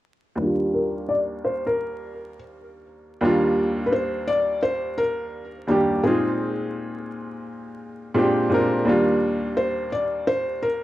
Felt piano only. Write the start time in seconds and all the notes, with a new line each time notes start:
0.74 A#4
1.09 D5
1.45 C5
1.67 A#4
3.86 B4
3.93 C5
4.28 D5
4.63 C5
4.98 A#4
5.68 G4
6.04 G#4
9.57 C5
9.92 D5
10.27 C5
10.62 A#4